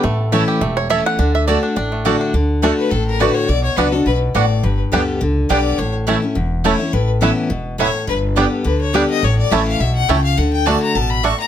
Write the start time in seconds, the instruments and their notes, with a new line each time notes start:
Already playing: five-string banjo B4
0.03 upright bass A1, steel-string acoustic guitar A2, five-string banjo A3
0.32 steel-string acoustic guitar E3 A3 C#4 E4, mandolin A3 E4 C#5 A5, five-string banjo E4
0.48 five-string banjo G4
0.61 upright bass E1, steel-string acoustic guitar E2, five-string banjo A3
0.77 five-string banjo C#5
0.90 steel-string acoustic guitar E3 A3 C#4 E4, mandolin A3 E4 C#5 A5, five-string banjo E5
1.06 five-string banjo F#5
1.19 upright bass D2, steel-string acoustic guitar D3, five-string banjo D4
1.35 five-string banjo E5
1.47 steel-string acoustic guitar D3 A3 D4 F#4, mandolin A3 F#4 D5 A5, five-string banjo D5
1.63 five-string banjo D4
1.76 upright bass A1, steel-string acoustic guitar A2, five-string banjo D4
1.92 five-string banjo A3
2.05 steel-string acoustic guitar D3 A3 D4 F#4, mandolin A3 F#4 D5 A5, five-string banjo D4
2.21 five-string banjo D4
2.33 upright bass D2, steel-string acoustic guitar D3
2.62 steel-string acoustic guitar D3 A3 D4 F#4, mandolin A3 F#4 D5 A5, five-string banjo A3 D4
2.78 fiddle B4
2.91 upright bass A1, steel-string acoustic guitar A2, fiddle A4
3.07 fiddle A#4
3.20 steel-string acoustic guitar D3 A3 D4 F#4, mandolin A3 F#4 D5 A5, five-string banjo A3 D4, fiddle B4
3.34 fiddle C#5
3.49 upright bass B1, steel-string acoustic guitar B2, fiddle D5
3.64 fiddle C#5
3.77 upright bass C#2, steel-string acoustic guitar F#3 B3 D4 F#4, mandolin B3 F#4 D5 F#5, five-string banjo B3 D4, fiddle B4
3.92 steel-string acoustic guitar D4 F#4, fiddle A4
4.06 upright bass B1, steel-string acoustic guitar B2, fiddle B4
4.34 upright bass A1, steel-string acoustic guitar A2, mandolin B3 F#4 D5 F#5, five-string banjo B3 D4, fiddle D5
4.64 upright bass G1, steel-string acoustic guitar G2, fiddle B4
4.92 upright bass D2, steel-string acoustic guitar D3 G3 B3 G4, five-string banjo G3 B3 D4, mandolin B3 G4 D5 G5
5.21 upright bass C#2, steel-string acoustic guitar D3
5.49 upright bass B1, steel-string acoustic guitar D3 G3 B3 G4, five-string banjo G3 B3 D4, mandolin B3 G4 D5 G5, fiddle D5
5.78 upright bass A1, steel-string acoustic guitar A2, fiddle C#5
6.07 steel-string acoustic guitar E3 A3 C#4 E4, mandolin A3 E4 C#5 A5, five-string banjo A3 C#4 E4
6.22 steel-string acoustic guitar C#4 E4
6.35 upright bass E1, steel-string acoustic guitar E2
6.64 steel-string acoustic guitar E3 A3 C#4 E4, mandolin A3 E4 C#5 A5, five-string banjo A3 C#4 E4, fiddle C#5
6.79 steel-string acoustic guitar C#4 E4
6.93 upright bass A1, steel-string acoustic guitar A2, fiddle B4
7.21 steel-string acoustic guitar E3 B3 C#4 E4, five-string banjo A3 B3 E4, mandolin C#4 A4 E5 B5
7.50 upright bass E1, steel-string acoustic guitar B2
7.78 steel-string acoustic guitar A2, five-string banjo A3 B3 E4, mandolin C#4 A4 E5 B5, fiddle C#5
8.07 upright bass G1, steel-string acoustic guitar G2, fiddle B4
8.36 steel-string acoustic guitar D3 G3 B3 G4, five-string banjo G3 B3 D4, mandolin B3 G4 D5 G5
8.64 upright bass D2, steel-string acoustic guitar D3, fiddle B4
8.81 fiddle C#5
8.93 steel-string acoustic guitar D3 G3 B3 G4, five-string banjo G3 B3 D4, mandolin B3 G4 D5 G5, fiddle D5
9.10 fiddle D#5
9.22 upright bass A1, steel-string acoustic guitar A2, fiddle C#5
9.38 fiddle D5
9.51 upright bass A1, steel-string acoustic guitar E3 A3 C#4 E4, mandolin A3 E4 C#5 A5, five-string banjo A3 C#4 E4, fiddle E5
9.67 fiddle F5
9.80 upright bass B1, steel-string acoustic guitar B2, fiddle E5
9.95 fiddle F#5
10.09 upright bass C#2, steel-string acoustic guitar C#3, mandolin A3 E4 C#5 A5, five-string banjo A3 C#4 E4, fiddle G5
10.24 fiddle F5
10.37 upright bass D2, steel-string acoustic guitar D3, fiddle F#5
10.53 fiddle G5
10.66 steel-string acoustic guitar D3 A3 D4 F#4, mandolin A3 F#4 D5 A5, five-string banjo A3 D4, fiddle A5
10.82 fiddle A#5
10.95 upright bass A1, steel-string acoustic guitar B2, fiddle A5
11.10 fiddle B5
11.23 mandolin A3 F#4 D5 A5, five-string banjo A3 D4, fiddle C#6
11.40 fiddle A#5